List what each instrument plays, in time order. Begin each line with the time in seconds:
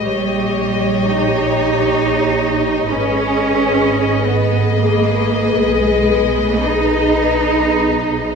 Already playing: violin section D#5
0.05 double bass section A#1, cello section G3, viola section G4, violin section C#5
1.05 cello section D#4
2.88 double bass section G#1, cello section C#4, viola section G#4, violin section B4 D#5
4.26 cello section B3
4.71 cello section A#3
5.62 double bass section B1, cello section G#3
6.60 cello section D#4